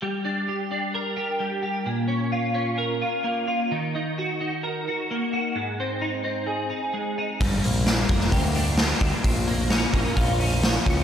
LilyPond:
<<
  \new Staff \with { instrumentName = "Clean electric guitar" } { \time 4/4 \key g \phrygian \tempo 4 = 130 g8 d'8 g'8 d'8 bes'8 g'8 g8 g'8 | bes,8 des'8 f'8 des'8 bes'8 f'8 bes8 f'8 | ees8 ees'8 ges'8 ees'8 bes'8 ges'8 bes8 ges'8 | aes,8 c'8 ees'8 c'8 aes'8 ees'8 aes8 ees'8 |
g,8 bes8 d'8 bes8 g'8 d'8 g8 d'8 | bes,8 bes8 des'8 bes8 f'8 des'8 f8 des'8 | }
  \new Staff \with { instrumentName = "Picked electric bass" } { \clef bass \time 4/4 \key g \phrygian r1 | r1 | r1 | r1 |
g,,8 bes,,4 f,,8 d,4. d,16 r16 | bes,,4. bes,,16 r16 bes,,4. des,8 | }
  \new DrumStaff \with { instrumentName = "Drums" } \drummode { \time 4/4 r4 r4 r4 r4 | r4 r4 r4 r4 | r4 r4 r4 r4 | r4 r4 r4 r4 |
<hho bd>8 hho8 <hho sn>8 <hho bd>16 sn16 <hho bd>8 hho8 <hho sn>8 <hho bd>8 | <hho bd>8 hho8 <hho sn>8 <hho bd>8 <hho bd>8 hho8 <hho sn>8 <hho bd>8 | }
>>